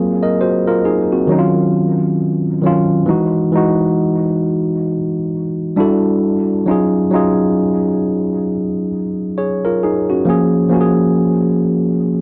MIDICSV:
0, 0, Header, 1, 2, 480
1, 0, Start_track
1, 0, Tempo, 895522
1, 1659, Time_signature, 4, 2, 24, 8
1, 6546, End_track
2, 0, Start_track
2, 0, Title_t, "Tine electric piano"
2, 0, Program_c, 0, 4
2, 0, Control_c, 0, 64, 127
2, 0, Note_on_c, 0, 54, 79
2, 0, Note_on_c, 0, 58, 66
2, 0, Note_on_c, 0, 60, 66
2, 0, Note_on_c, 0, 65, 66
2, 0, Note_on_c, 0, 68, 81
2, 0, Note_on_c, 0, 70, 57
2, 122, Note_on_c, 0, 75, 57
2, 124, Note_off_c, 0, 70, 0
2, 124, Note_on_c, 0, 70, 50
2, 214, Note_off_c, 0, 75, 0
2, 215, Note_off_c, 0, 70, 0
2, 219, Note_on_c, 0, 72, 66
2, 220, Note_on_c, 0, 66, 53
2, 356, Note_off_c, 0, 66, 0
2, 356, Note_off_c, 0, 72, 0
2, 362, Note_on_c, 0, 70, 72
2, 365, Note_off_c, 0, 65, 0
2, 365, Note_on_c, 0, 65, 57
2, 454, Note_off_c, 0, 70, 0
2, 456, Note_off_c, 0, 65, 0
2, 457, Note_off_c, 0, 68, 0
2, 457, Note_on_c, 0, 68, 67
2, 459, Note_on_c, 0, 63, 51
2, 595, Note_off_c, 0, 68, 0
2, 596, Note_off_c, 0, 63, 0
2, 602, Note_on_c, 0, 66, 57
2, 606, Note_off_c, 0, 60, 0
2, 606, Note_on_c, 0, 60, 48
2, 681, Note_on_c, 0, 51, 85
2, 692, Note_off_c, 0, 54, 0
2, 692, Note_on_c, 0, 54, 77
2, 700, Note_on_c, 0, 61, 70
2, 706, Control_c, 0, 64, 0
2, 706, Note_on_c, 0, 63, 71
2, 709, Note_off_c, 0, 58, 0
2, 743, Note_on_c, 0, 65, 87
2, 745, Note_off_c, 0, 63, 0
2, 798, Control_c, 0, 64, 127
2, 831, Note_off_c, 0, 66, 0
2, 833, Note_off_c, 0, 60, 0
2, 1285, Note_off_c, 0, 51, 0
2, 1291, Note_off_c, 0, 54, 0
2, 1295, Note_off_c, 0, 61, 0
2, 1316, Note_off_c, 0, 65, 0
2, 1405, Note_on_c, 0, 51, 70
2, 1412, Note_on_c, 0, 54, 69
2, 1423, Note_on_c, 0, 61, 70
2, 1428, Note_on_c, 0, 65, 83
2, 1610, Note_off_c, 0, 51, 0
2, 1614, Note_off_c, 0, 54, 0
2, 1619, Note_off_c, 0, 61, 0
2, 1622, Note_off_c, 0, 65, 0
2, 1640, Note_on_c, 0, 52, 78
2, 1649, Note_on_c, 0, 56, 65
2, 1656, Note_on_c, 0, 63, 72
2, 1665, Note_on_c, 0, 66, 80
2, 1667, Control_c, 0, 64, 0
2, 1769, Control_c, 0, 64, 127
2, 1848, Note_off_c, 0, 52, 0
2, 1852, Note_off_c, 0, 56, 0
2, 1856, Note_off_c, 0, 63, 0
2, 1860, Note_off_c, 0, 66, 0
2, 1888, Note_on_c, 0, 52, 70
2, 1897, Note_on_c, 0, 56, 61
2, 1905, Note_on_c, 0, 63, 69
2, 1915, Note_on_c, 0, 66, 86
2, 2650, Note_off_c, 0, 52, 0
2, 2655, Note_off_c, 0, 56, 0
2, 2659, Note_off_c, 0, 63, 0
2, 2664, Note_off_c, 0, 66, 0
2, 3090, Note_on_c, 0, 55, 75
2, 3094, Note_on_c, 0, 62, 70
2, 3100, Note_on_c, 0, 64, 71
2, 3107, Note_on_c, 0, 66, 67
2, 3108, Control_c, 0, 64, 0
2, 3110, Note_on_c, 0, 69, 86
2, 3197, Control_c, 0, 64, 127
2, 3498, Note_off_c, 0, 55, 0
2, 3500, Note_off_c, 0, 62, 0
2, 3503, Note_off_c, 0, 64, 0
2, 3506, Note_off_c, 0, 66, 0
2, 3508, Note_off_c, 0, 69, 0
2, 3570, Note_on_c, 0, 54, 75
2, 3578, Note_on_c, 0, 61, 66
2, 3581, Note_on_c, 0, 63, 72
2, 3586, Control_c, 0, 64, 0
2, 3589, Note_on_c, 0, 65, 68
2, 3597, Note_on_c, 0, 68, 82
2, 3669, Control_c, 0, 64, 127
2, 3773, Note_off_c, 0, 54, 0
2, 3777, Note_off_c, 0, 61, 0
2, 3778, Note_off_c, 0, 63, 0
2, 3782, Note_off_c, 0, 65, 0
2, 3786, Note_off_c, 0, 68, 0
2, 3811, Note_on_c, 0, 54, 74
2, 3819, Note_on_c, 0, 61, 69
2, 3825, Note_on_c, 0, 63, 70
2, 3829, Note_on_c, 0, 65, 70
2, 3836, Note_on_c, 0, 68, 81
2, 4572, Note_off_c, 0, 54, 0
2, 4576, Note_off_c, 0, 61, 0
2, 4579, Note_off_c, 0, 63, 0
2, 4581, Note_off_c, 0, 65, 0
2, 4584, Note_off_c, 0, 68, 0
2, 5026, Note_on_c, 0, 73, 60
2, 5030, Note_on_c, 0, 68, 50
2, 5160, Note_off_c, 0, 73, 0
2, 5161, Note_off_c, 0, 68, 0
2, 5171, Note_on_c, 0, 70, 61
2, 5177, Note_on_c, 0, 65, 54
2, 5259, Note_off_c, 0, 70, 0
2, 5262, Note_off_c, 0, 65, 0
2, 5271, Note_on_c, 0, 68, 67
2, 5276, Note_on_c, 0, 63, 55
2, 5402, Note_off_c, 0, 68, 0
2, 5405, Note_off_c, 0, 63, 0
2, 5412, Note_on_c, 0, 66, 62
2, 5417, Note_on_c, 0, 61, 51
2, 5495, Note_on_c, 0, 53, 75
2, 5503, Note_on_c, 0, 58, 65
2, 5506, Control_c, 0, 64, 0
2, 5508, Note_off_c, 0, 61, 0
2, 5514, Note_on_c, 0, 61, 71
2, 5519, Note_on_c, 0, 68, 86
2, 5588, Control_c, 0, 64, 127
2, 5636, Note_off_c, 0, 66, 0
2, 5695, Note_off_c, 0, 53, 0
2, 5699, Note_off_c, 0, 58, 0
2, 5705, Note_off_c, 0, 61, 0
2, 5707, Note_off_c, 0, 68, 0
2, 5731, Note_on_c, 0, 53, 69
2, 5740, Note_on_c, 0, 58, 67
2, 5748, Note_on_c, 0, 61, 73
2, 5757, Note_on_c, 0, 66, 71
2, 5790, Note_off_c, 0, 66, 0
2, 5793, Note_on_c, 0, 68, 83
2, 6492, Note_off_c, 0, 53, 0
2, 6496, Note_off_c, 0, 58, 0
2, 6501, Note_off_c, 0, 61, 0
2, 6523, Note_off_c, 0, 68, 0
2, 6546, End_track
0, 0, End_of_file